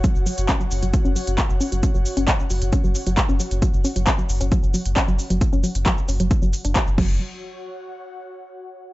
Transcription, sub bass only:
0.16 0.26 F#1 medium
0.38 0.49 F#1 medium
0.71 0.82 F#1 loud
0.83 0.93 F#1 medium
1.05 1.16 F#1 medium
1.27 1.38 F#1 medium
1.50 1.61 F#1 medium
1.72 1.83 F#1 medium
1.95 2.05 F#1 medium
2.17 2.28 F#1 medium
2.50 2.61 F#1 loud
2.62 2.72 F#1 medium
2.84 2.95 F#1 medium
3.07 3.17 F#1 medium
3.29 3.40 F#1 medium
3.51 3.62 F#1 medium
3.74 3.84 F#1 medium
3.96 4.07 F#1 medium
4.29 4.40 F#1 loud
4.41 4.52 F#1 medium
4.63 4.74 F#1 medium
4.86 4.96 F#1 medium
5.08 5.19 F#1 medium
5.30 5.41 F#1 medium
5.53 5.63 F#1 medium
5.75 5.86 F#1 medium
6.08 6.19 F#1 loud
6.20 6.31 F#1 medium
6.42 6.53 F#1 medium
6.65 6.75 F#1 medium
6.87 6.97 F#1 medium
6.98 7.19 F#1 loud

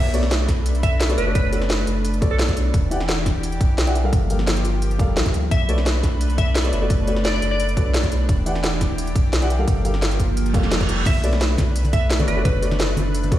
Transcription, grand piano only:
0.00 0.12 B3 medium
0.00 0.12 F#4 medium
0.00 0.12 A4 medium
0.00 0.12 C#5 medium
0.00 0.12 D5 medium
0.13 0.21 B3 medium
0.13 0.21 F#4 medium
0.13 0.21 A4 medium
0.13 0.21 C#5 medium
0.13 0.22 D5 loud
1.09 1.24 B3 medium
1.09 1.25 F#4 medium
1.09 1.25 A4 medium
1.09 1.25 C#5 medium
1.09 1.25 D5 medium
1.26 1.50 B3 medium
1.26 1.50 F#4 medium
1.26 1.50 A4 medium
1.26 1.51 C#5 medium
1.26 1.51 D5 medium
1.52 1.60 B3 medium
1.52 1.60 F#4 medium
1.52 1.60 A4 medium
1.52 1.60 C#5 medium
1.52 1.60 D5 medium
2.20 2.72 B3 medium
2.20 2.73 F#4 medium
2.20 2.73 A4 medium
2.20 2.73 C#5 medium
2.20 2.74 D5 medium
2.91 2.98 E3 medium
2.91 2.98 E4 medium
2.91 2.99 G4 medium
2.91 2.99 D5 medium
2.91 2.99 F#5 medium
3.86 4.02 E3 medium
3.86 4.02 E4 medium
3.86 4.02 G4 medium
3.86 4.02 D5 medium
3.86 4.03 F#5 medium
4.04 4.28 G3 medium
4.04 4.28 G4 medium
4.04 4.28 A4 medium
4.04 4.28 A#4 medium
4.04 4.28 F5 medium
4.29 4.37 G3 medium
4.29 4.37 G4 medium
4.29 4.37 A4 medium
4.29 4.38 A#4 medium
4.29 4.38 F5 medium
4.98 5.50 G3 medium
4.98 5.50 G4 medium
4.98 5.51 A4 medium
4.98 5.51 A#4 medium
4.98 5.51 F5 medium
5.68 5.76 B3 medium
5.68 5.76 F#4 medium
5.68 5.76 A4 medium
5.68 5.76 C#5 medium
5.68 5.76 D5 loud
6.64 6.79 B3 medium
6.64 6.79 F#4 medium
6.64 6.80 A4 medium
6.64 6.80 C#5 medium
6.64 6.80 D5 medium
6.81 7.05 B3 medium
6.81 7.05 F#4 medium
6.81 7.06 A4 medium
6.81 7.06 C#5 medium
6.81 7.06 D5 medium
7.07 7.14 B3 medium
7.07 7.15 F#4 medium
7.07 7.15 A4 medium
7.07 7.15 C#5 medium
7.07 7.15 D5 medium
7.76 8.27 B3 medium
7.76 8.28 F#4 medium
7.76 8.28 A4 medium
7.76 8.28 C#5 medium
7.76 8.28 D5 medium
8.46 8.53 E3 medium
8.46 8.53 E4 medium
8.46 8.54 G4 medium
8.46 8.54 D5 medium
8.46 8.54 F#5 medium
9.41 9.57 E3 medium
9.41 9.57 E4 medium
9.41 9.57 G4 medium
9.41 9.57 D5 medium
9.41 9.57 F#5 medium
9.59 9.83 G3 medium
9.59 9.83 G4 medium
9.59 9.83 A4 medium
9.59 9.83 A#4 medium
9.59 9.83 F5 medium
9.84 9.92 G3 medium
9.84 9.92 G4 medium
9.84 9.92 A4 medium
9.84 9.92 A#4 medium
9.84 9.93 F5 medium
10.53 11.05 G3 medium
10.53 11.05 G4 medium
10.53 11.05 A4 medium
10.53 11.06 A#4 medium
10.53 11.06 F5 medium
11.23 11.31 B3 medium
11.23 11.31 F#4 medium
11.23 11.31 A4 medium
11.23 11.31 C#5 medium
11.23 11.31 D5 loud
12.19 12.34 B3 medium
12.19 12.34 F#4 medium
12.19 12.35 A4 medium
12.19 12.35 C#5 medium
12.19 12.35 D5 medium
12.36 12.60 B3 medium
12.36 12.60 F#4 medium
12.36 12.60 A4 medium
12.36 12.61 C#5 medium
12.36 12.61 D5 medium
12.62 12.69 B3 medium
12.62 12.69 F#4 medium
12.62 12.70 A4 medium
12.62 12.70 C#5 medium
12.62 12.70 D5 medium
13.31 13.39 B3 medium
13.31 13.39 F#4 medium
13.31 13.39 A4 medium
13.31 13.39 C#5 medium
13.31 13.39 D5 medium

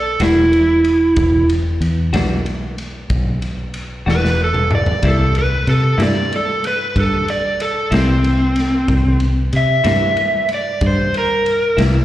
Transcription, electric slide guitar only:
0.00 0.22 A4 medium
0.23 1.47 E4 loud
4.10 4.40 B4 loud
4.44 4.73 A4 medium
4.75 5.04 D5 medium
5.08 5.37 A4 medium
5.39 5.68 B4 loud
5.69 6.00 A4 medium
6.02 6.32 D5 loud
6.36 6.65 A4 medium
6.67 6.97 B4 medium
7.00 7.29 A4 medium
7.30 7.60 D5 medium
7.62 7.92 A4 medium
7.95 9.19 C4 loud
9.57 10.49 E5 loud
10.54 10.83 D5 medium
10.87 11.16 C5 loud
11.18 11.79 A#4 loud

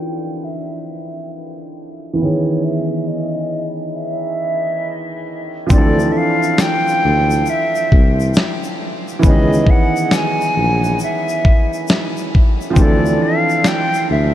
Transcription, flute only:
0.00 0.46 G5 loud
0.44 1.31 E5 medium
2.20 2.66 C#5 medium
2.64 3.09 E5 loud
3.07 3.98 D#5 loud
3.96 5.27 E5 loud
5.73 6.14 D5 medium
6.12 6.19 E5 medium
6.17 6.62 F5 loud
6.61 7.51 G5 loud
7.50 8.37 E5 medium
9.26 9.72 D#5 loud
9.70 10.16 F#5 loud
10.15 11.02 G#5 loud
11.03 11.86 E5 loud
12.79 13.24 D5 medium
13.23 13.69 F5 loud
13.67 14.10 G5 loud
14.11 14.34 E5 medium

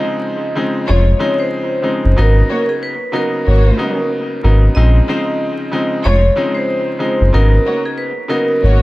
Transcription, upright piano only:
0.00 0.52 C#3 loud
0.00 0.52 F3 medium
0.00 0.52 G#3 medium
0.00 0.52 C4 medium
0.00 0.53 D#4 loud
0.55 1.02 C#3 loud
0.55 1.02 F3 medium
0.55 1.03 G#3 medium
0.55 1.03 C4 medium
0.55 1.03 D#4 loud
1.19 1.80 C#3 medium
1.19 1.80 F3 medium
1.19 1.81 G#3 medium
1.19 1.81 C4 medium
1.19 1.81 D#4 loud
1.83 2.14 C#3 medium
1.83 2.14 F3 medium
1.83 2.14 G#3 medium
1.83 2.14 C4 medium
1.83 2.15 D#4 medium
2.17 2.93 C#3 loud
2.17 2.93 F#3 medium
2.17 2.93 A#3 medium
2.17 2.93 B3 medium
2.17 2.93 D#4 loud
3.12 3.73 C#3 medium
3.12 3.74 F#3 medium
3.12 3.74 A#3 medium
3.12 3.74 B3 medium
3.12 3.74 D#4 loud
3.78 4.38 C#3 loud
3.78 4.39 F#3 medium
3.78 4.39 A#3 medium
3.78 4.39 B3 medium
3.78 4.39 D#4 loud
4.43 4.73 C#3 medium
4.43 4.73 F#3 medium
4.43 4.74 A#3 medium
4.43 4.74 B3 medium
4.43 4.74 D#4 medium
4.76 5.06 C#3 medium
4.76 5.06 F3 medium
4.76 5.06 G#3 medium
4.76 5.06 C4 medium
4.76 5.06 D#4 loud
5.08 5.68 C#3 loud
5.08 5.68 F3 medium
5.08 5.68 G#3 medium
5.08 5.69 C4 medium
5.08 5.69 D#4 loud
5.72 6.18 C#3 loud
5.72 6.19 F3 medium
5.72 6.19 G#3 medium
5.72 6.19 C4 medium
5.72 6.19 D#4 loud
6.36 6.96 C#3 loud
6.36 6.97 F3 medium
6.36 6.97 G#3 loud
6.36 6.97 C4 medium
6.36 6.97 D#4 loud
6.99 7.30 C#3 medium
6.99 7.30 F3 medium
6.99 7.31 G#3 medium
6.99 7.31 C4 medium
6.99 7.31 D#4 medium
7.33 8.09 C#3 loud
7.33 8.09 F#3 medium
7.33 8.09 A#3 medium
7.33 8.09 B3 medium
7.33 8.10 D#4 loud
8.28 8.82 C#3 medium
8.28 8.82 F#3 medium
8.28 8.82 A#3 medium
8.28 8.82 B3 medium
8.28 8.82 D#4 loud

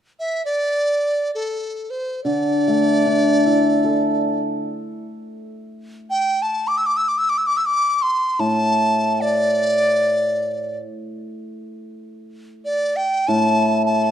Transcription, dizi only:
0.19 0.45 E5 medium
0.45 1.31 D5 medium
1.35 1.92 A4 medium
1.90 2.23 C5 medium
2.24 4.40 D5 medium
6.10 6.44 G5 medium
6.42 6.69 A5 medium
6.67 6.79 D6 medium
6.77 6.87 E6 medium
6.86 6.98 D6 medium
6.97 7.10 E6 medium
7.08 7.19 D6 medium
7.18 7.31 E6 medium
7.29 7.39 D6 medium
7.38 7.48 E6 medium
7.47 7.58 D6 medium
7.57 7.67 E6 medium
7.66 8.04 D6 medium
8.02 8.41 C6 medium
8.40 9.22 A5 medium
9.21 10.78 D5 medium
12.65 12.98 D5 medium
12.96 13.29 G5 medium
13.28 13.85 A5 medium
13.86 14.11 A5 medium

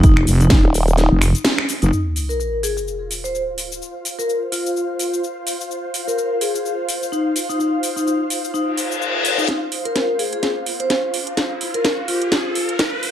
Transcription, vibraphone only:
0.04 0.12 D#4 medium
0.41 0.47 D#4 medium
0.51 0.59 D#4 medium
0.98 1.16 D#4 medium
1.82 1.92 D#4 medium
2.29 2.36 A#4 medium
2.40 2.48 A#4 medium
2.63 2.72 G#4 medium
2.77 2.83 G#4 medium
3.24 3.40 C5 medium
4.19 4.35 A#4 medium
4.52 5.19 F4 medium
6.08 6.14 A#4 medium
6.18 6.26 A#4 medium
6.41 6.50 G#4 medium
6.55 6.61 G#4 medium
7.12 7.30 D#4 medium
7.49 7.56 D#4 medium
7.59 7.68 D#4 medium
7.96 8.03 D#4 medium
8.07 8.15 D#4 medium
8.54 8.72 D#4 medium
9.38 9.48 D#4 medium
9.85 9.92 A#4 medium
9.96 10.04 A#4 medium
10.19 10.28 G#4 medium
10.33 10.39 G#4 medium
10.80 10.96 C5 loud
11.74 11.90 A#4 medium
12.08 12.75 F4 medium

